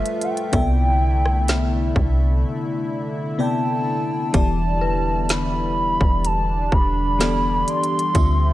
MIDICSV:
0, 0, Header, 1, 7, 480
1, 0, Start_track
1, 0, Tempo, 952381
1, 268, Time_signature, 4, 2, 24, 8
1, 4300, End_track
2, 0, Start_track
2, 0, Title_t, "Soft synth lead"
2, 0, Program_c, 0, 80
2, 0, Note_on_c, 0, 76, 107
2, 121, Note_on_c, 0, 78, 79
2, 129, Note_off_c, 0, 76, 0
2, 152, Note_on_c, 0, 79, 112
2, 159, Note_off_c, 0, 78, 0
2, 1110, Note_off_c, 0, 79, 0
2, 1716, Note_on_c, 0, 81, 99
2, 2172, Note_off_c, 0, 81, 0
2, 2196, Note_on_c, 0, 81, 112
2, 2674, Note_on_c, 0, 83, 115
2, 2682, Note_off_c, 0, 81, 0
2, 3154, Note_on_c, 0, 81, 111
2, 3161, Note_off_c, 0, 83, 0
2, 3394, Note_on_c, 0, 83, 114
2, 3402, Note_off_c, 0, 81, 0
2, 3872, Note_on_c, 0, 84, 127
2, 3879, Note_off_c, 0, 83, 0
2, 4300, Note_off_c, 0, 84, 0
2, 4300, End_track
3, 0, Start_track
3, 0, Title_t, "Synth bell"
3, 0, Program_c, 1, 98
3, 2426, Note_on_c, 1, 71, 61
3, 3628, Note_on_c, 1, 69, 54
3, 3823, Note_off_c, 1, 71, 0
3, 4300, Note_off_c, 1, 69, 0
3, 4300, End_track
4, 0, Start_track
4, 0, Title_t, "FM electric piano"
4, 0, Program_c, 2, 5
4, 0, Control_c, 2, 64, 127
4, 0, Note_on_c, 2, 55, 76
4, 0, Note_on_c, 2, 65, 69
4, 0, Note_on_c, 2, 69, 64
4, 0, Note_on_c, 2, 71, 72
4, 0, Note_on_c, 2, 76, 85
4, 95, Note_off_c, 2, 55, 0
4, 97, Note_off_c, 2, 65, 0
4, 99, Note_off_c, 2, 69, 0
4, 100, Note_off_c, 2, 71, 0
4, 102, Note_off_c, 2, 76, 0
4, 261, Note_on_c, 2, 48, 79
4, 266, Note_on_c, 2, 59, 71
4, 270, Note_on_c, 2, 69, 72
4, 272, Note_on_c, 2, 74, 66
4, 274, Control_c, 2, 64, 0
4, 276, Note_on_c, 2, 76, 82
4, 354, Control_c, 2, 64, 127
4, 884, Note_off_c, 2, 48, 0
4, 886, Note_off_c, 2, 59, 0
4, 888, Note_off_c, 2, 69, 0
4, 889, Note_off_c, 2, 74, 0
4, 892, Note_off_c, 2, 76, 0
4, 1703, Note_on_c, 2, 48, 77
4, 1707, Note_on_c, 2, 59, 70
4, 1709, Note_on_c, 2, 69, 69
4, 1712, Note_on_c, 2, 74, 66
4, 1716, Note_on_c, 2, 79, 80
4, 2016, Note_off_c, 2, 48, 0
4, 2017, Note_off_c, 2, 59, 0
4, 2018, Note_off_c, 2, 69, 0
4, 2020, Note_off_c, 2, 74, 0
4, 2022, Note_off_c, 2, 79, 0
4, 2181, Note_on_c, 2, 52, 80
4, 2186, Note_on_c, 2, 59, 70
4, 2190, Note_on_c, 2, 67, 70
4, 2194, Control_c, 2, 64, 0
4, 2195, Note_on_c, 2, 74, 81
4, 2268, Control_c, 2, 64, 127
4, 2804, Note_off_c, 2, 52, 0
4, 2807, Note_off_c, 2, 59, 0
4, 2808, Note_off_c, 2, 67, 0
4, 2811, Note_off_c, 2, 74, 0
4, 3622, Note_on_c, 2, 52, 76
4, 3627, Note_on_c, 2, 59, 67
4, 3631, Note_on_c, 2, 67, 65
4, 3636, Note_on_c, 2, 74, 85
4, 3935, Note_off_c, 2, 52, 0
4, 3937, Note_off_c, 2, 59, 0
4, 3940, Note_off_c, 2, 67, 0
4, 3942, Note_off_c, 2, 74, 0
4, 4102, Note_on_c, 2, 50, 82
4, 4105, Note_on_c, 2, 60, 72
4, 4109, Note_on_c, 2, 65, 69
4, 4111, Note_on_c, 2, 67, 70
4, 4115, Control_c, 2, 64, 0
4, 4115, Note_on_c, 2, 76, 86
4, 4217, Control_c, 2, 64, 127
4, 4300, Note_off_c, 2, 50, 0
4, 4300, Note_off_c, 2, 60, 0
4, 4300, Note_off_c, 2, 65, 0
4, 4300, Note_off_c, 2, 67, 0
4, 4300, Note_off_c, 2, 76, 0
4, 4300, End_track
5, 0, Start_track
5, 0, Title_t, "Analog synth pad"
5, 0, Program_c, 3, 89
5, 0, Note_on_c, 3, 53, 81
5, 0, Note_on_c, 3, 57, 74
5, 0, Note_on_c, 3, 65, 89
5, 250, Note_off_c, 3, 53, 0
5, 251, Note_off_c, 3, 65, 0
5, 270, Note_on_c, 3, 50, 82
5, 270, Note_on_c, 3, 64, 89
5, 2170, Note_off_c, 3, 57, 0
5, 2188, Note_on_c, 3, 55, 71
5, 3129, Note_off_c, 3, 64, 0
5, 3147, Note_on_c, 3, 62, 91
5, 4089, Note_off_c, 3, 50, 0
5, 4098, Note_off_c, 3, 62, 0
5, 4108, Note_on_c, 3, 60, 73
5, 4108, Note_on_c, 3, 65, 92
5, 4110, Note_on_c, 3, 53, 85
5, 4300, Note_off_c, 3, 53, 0
5, 4300, Note_off_c, 3, 55, 0
5, 4300, Note_off_c, 3, 60, 0
5, 4300, Note_off_c, 3, 65, 0
5, 4300, End_track
6, 0, Start_track
6, 0, Title_t, "808-style bass"
6, 0, Program_c, 4, 38
6, 267, Note_on_c, 4, 36, 113
6, 968, Note_off_c, 4, 36, 0
6, 987, Note_on_c, 4, 36, 113
6, 1227, Note_off_c, 4, 36, 0
6, 2188, Note_on_c, 4, 28, 110
6, 3008, Note_off_c, 4, 28, 0
6, 3027, Note_on_c, 4, 28, 104
6, 3373, Note_off_c, 4, 28, 0
6, 3388, Note_on_c, 4, 28, 106
6, 3849, Note_off_c, 4, 28, 0
6, 4108, Note_on_c, 4, 38, 111
6, 4300, Note_off_c, 4, 38, 0
6, 4300, End_track
7, 0, Start_track
7, 0, Title_t, "Drums"
7, 28, Note_on_c, 9, 42, 55
7, 79, Note_off_c, 9, 42, 0
7, 108, Note_on_c, 9, 42, 56
7, 159, Note_off_c, 9, 42, 0
7, 187, Note_on_c, 9, 42, 55
7, 238, Note_off_c, 9, 42, 0
7, 266, Note_on_c, 9, 42, 68
7, 268, Note_on_c, 9, 36, 121
7, 317, Note_off_c, 9, 42, 0
7, 318, Note_off_c, 9, 36, 0
7, 633, Note_on_c, 9, 37, 69
7, 683, Note_off_c, 9, 37, 0
7, 748, Note_on_c, 9, 42, 76
7, 752, Note_on_c, 9, 38, 110
7, 798, Note_off_c, 9, 42, 0
7, 802, Note_off_c, 9, 38, 0
7, 987, Note_on_c, 9, 36, 98
7, 1038, Note_off_c, 9, 36, 0
7, 2187, Note_on_c, 9, 42, 73
7, 2188, Note_on_c, 9, 36, 122
7, 2237, Note_off_c, 9, 42, 0
7, 2238, Note_off_c, 9, 36, 0
7, 2667, Note_on_c, 9, 42, 78
7, 2672, Note_on_c, 9, 38, 115
7, 2718, Note_off_c, 9, 42, 0
7, 2722, Note_off_c, 9, 38, 0
7, 3027, Note_on_c, 9, 36, 101
7, 3078, Note_off_c, 9, 36, 0
7, 3148, Note_on_c, 9, 42, 65
7, 3198, Note_off_c, 9, 42, 0
7, 3388, Note_on_c, 9, 36, 99
7, 3438, Note_off_c, 9, 36, 0
7, 3632, Note_on_c, 9, 42, 76
7, 3633, Note_on_c, 9, 38, 109
7, 3682, Note_off_c, 9, 42, 0
7, 3683, Note_off_c, 9, 38, 0
7, 3870, Note_on_c, 9, 42, 57
7, 3920, Note_off_c, 9, 42, 0
7, 3949, Note_on_c, 9, 42, 56
7, 3999, Note_off_c, 9, 42, 0
7, 4027, Note_on_c, 9, 42, 53
7, 4077, Note_off_c, 9, 42, 0
7, 4107, Note_on_c, 9, 42, 69
7, 4108, Note_on_c, 9, 36, 119
7, 4157, Note_off_c, 9, 42, 0
7, 4158, Note_off_c, 9, 36, 0
7, 4300, End_track
0, 0, End_of_file